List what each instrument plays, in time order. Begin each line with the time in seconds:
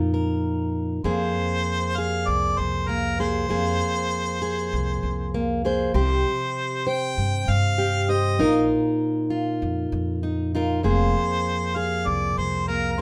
Already playing: upright bass F2, steel-string acoustic guitar A#2 D#4 F4 A#4
0.14 steel-string acoustic guitar A#4
1.04 upright bass F2, steel-string acoustic guitar F2 A#3 G#4, harmonica C5
1.97 steel-string acoustic guitar G#4, harmonica F5
2.27 upright bass C2, harmonica D5
2.59 upright bass C2, harmonica C5
2.88 steel-string acoustic guitar A#3, harmonica A#4
3.19 steel-string acoustic guitar A#3 G#4, harmonica C5
3.49 steel-string acoustic guitar F2 A#3 G#4, upright bass F2
4.42 steel-string acoustic guitar G#4
4.73 upright bass C2
5.03 upright bass C2
5.34 steel-string acoustic guitar A#3
5.65 steel-string acoustic guitar A#3 G#4 C5
5.94 upright bass C2, steel-string acoustic guitar C3 G4, harmonica C5
6.87 steel-string acoustic guitar C5, harmonica G5
7.18 upright bass G2
7.48 upright bass G2, harmonica F5
7.78 steel-string acoustic guitar G4
8.09 steel-string acoustic guitar G4 C5, harmonica D#5
8.39 upright bass A#1, steel-string acoustic guitar A#2 D#4 F4 A#4
9.30 steel-string acoustic guitar F4
9.62 upright bass F2
9.92 upright bass F2
10.23 steel-string acoustic guitar D#4
10.55 steel-string acoustic guitar D#4 F4 A#4
10.83 upright bass F1, steel-string acoustic guitar F2 A#3 G#4, harmonica C5
11.76 steel-string acoustic guitar G#4, harmonica F5
12.06 upright bass C2, harmonica D5
12.37 upright bass C2, harmonica C5
12.68 steel-string acoustic guitar A#3, harmonica A#4
12.92 harmonica A#4
12.98 steel-string acoustic guitar A#3